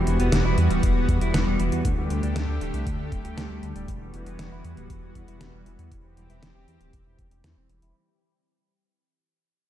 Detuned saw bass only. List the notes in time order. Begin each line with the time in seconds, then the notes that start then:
0.07 E1
0.20 E1
0.32 E1
0.45 E1
0.58 E2
0.70 D1
0.83 E1
0.96 E1
1.09 E2
1.21 E1
1.34 E1
1.47 E1
1.60 E1
1.72 E2
1.85 D2
1.98 D2
2.10 D2
2.23 D2
2.36 D2
2.49 D2
2.61 D1
2.74 C2
2.87 D2
2.99 D2
3.12 D1
3.25 D2
3.37 D2
3.50 D2
3.63 D2
3.75 D1
3.88 E1
4.01 E1
4.14 E1
4.26 E1
4.39 E1
4.52 E1
4.65 E2
4.77 D1
4.90 E1
5.03 E1
5.15 E2
5.28 E1
5.41 E1
5.54 E1
5.66 E1
5.79 E2
5.92 E1
6.04 E1
6.17 E1
6.30 E1
6.42 E1
6.55 E1
6.68 E2
6.81 D1
6.93 E1
7.06 E1
7.19 E1
7.31 E1
7.44 E2
7.57 E1
7.70 E1
7.82 E1